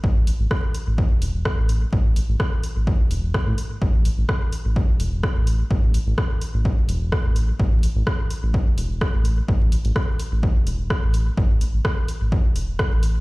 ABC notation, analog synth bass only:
X:1
M:4/4
L:1/16
Q:"Swing 16ths" 1/4=127
K:Clyd
V:1 name="Analog synth bass" clef=bass
A,,,2 z A,,, z3 A,,,2 z E,,,2 z A,,,2 z | A,,,2 z A,,, z3 A,,,2 z E,,,2 z A,, z2 | A,,,2 z A,,, z3 A,,,2 z E,,,2 z A,,,2 z | A,,,2 z A,,, z3 A,,,2 z E,,,2 z A,,,2 z |
A,,,2 z A,,, z3 A,,,2 z E,,,2 z A,,,2 z | A,,,2 z A,,, z3 A,,,2 z E,,,2 z A,,,2 z | A,,,2 z A,,, z3 A,,,2 z E,,,2 z A,,,2 z |]